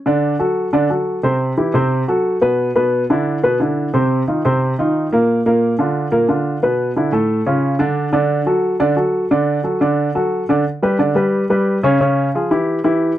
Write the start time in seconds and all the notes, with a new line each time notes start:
0.06 D3 D4 D5
0.39 F#3 F#4 A4
0.73 D3 D4 D5
0.90 F#3 F#4 A4
1.23 C3 C4 C5
1.57 E3 E4 G4
1.74 C3 C4 C5
2.08 F#3 F#4 A4
2.42 B2 B3 B4
2.76 B2 B3 B4
3.10 D3 D4 E4
3.43 B2 B3 B4
3.60 D3 D4 E4
3.94 C3 C4 C5
4.28 D#3 D#4 F4
4.45 C3 C4 C5
4.78 D#3 D#4 F4
5.12 A#2 A#3 A#4
5.46 A#2 A#3 A#4
5.79 D3 D4 F4
6.11 A#2 A#3 A#4
6.28 D3 D4 F4
6.63 B2 B3 B4
6.96 D3 D4 E4
7.12 A2 A3 A4
7.46 C#3 C#4 F4
7.79 D3 D4 D5
8.13 D3 D4 D5
8.46 F#3 F#4 A4
8.80 D3 D4 D5
8.96 F#3 F#4 A4
9.31 D3 D4 D5
9.64 F#3 F#4 A4
9.81 D3 D4 D5
10.15 F#3 F#4 A4
10.49 D3 D4 D5
10.82 G3 G4 B4
10.99 D3 D4 D5
11.15 G3 G4 B4
11.50 G3 G4 B4
11.83 C#3 C#4 C#5
12.00 C#3 C#4 C#5
12.35 F3 F4 G#4
12.51 E3 E4 G4
12.84 E3 E4 G4